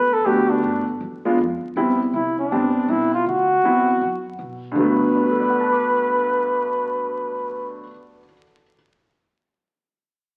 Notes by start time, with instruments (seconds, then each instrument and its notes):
Already playing: upright bass E2, flugelhorn B4
0.13 flugelhorn A4
0.25 upright bass D2, grand piano A3 B3 D4 F#4, flugelhorn G4
0.50 flugelhorn D4
0.63 upright bass G2
1.00 upright bass E2
1.25 grand piano G#3 B3 D4 F4
1.38 upright bass F2
1.63 muted upright bass stroke
1.76 upright bass E2, grand piano G3 B3 C4 E4
2.13 upright bass C2, flugelhorn E4
2.39 flugelhorn D4
2.52 upright bass G1, grand piano G3 B3 C4 D4
2.88 upright bass B1, flugelhorn E4
3.14 flugelhorn F4
3.26 upright bass D2, flugelhorn F#4
3.64 upright bass E2, grand piano F#3 B3 C4 E4
4.01 upright bass F#2
4.39 upright bass B2
4.71 grand piano G2 D3
4.76 upright bass G1, grand piano F#3, flugelhorn B4
4.80 grand piano A3 B3
5.15 grand piano D4
5.23 grand piano F#4
5.31 grand piano A4
5.40 grand piano D5
5.50 grand piano F#5
5.61 grand piano A5
5.72 grand piano D6